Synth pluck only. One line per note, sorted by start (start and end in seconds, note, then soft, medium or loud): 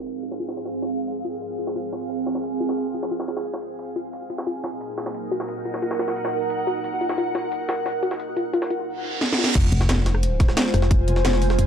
0.23 0.30 F4 medium
0.40 0.47 F4 loud
0.57 0.61 F4 medium
1.25 1.29 F4 loud
1.59 1.66 F4 medium
1.76 1.83 F4 loud
1.93 1.97 F4 medium
2.60 2.65 F4 loud
2.94 3.02 F4 medium
3.11 3.19 F4 loud
3.28 3.33 F4 medium
3.96 4.00 F4 loud
4.30 4.37 F4 medium
4.47 4.54 F4 loud
4.64 4.68 F4 medium
5.31 5.36 F#4 loud
5.65 5.73 F4 medium
5.82 5.90 F4 medium
5.99 6.04 F4 medium
6.67 6.72 F#4 loud
7.01 7.08 F4 medium
7.18 7.25 F4 loud
7.35 7.39 F4 medium
8.03 8.07 F#4 medium
8.37 8.44 F4 medium
8.54 8.61 F4 loud
8.70 8.75 F4 medium
9.38 9.46 F4 medium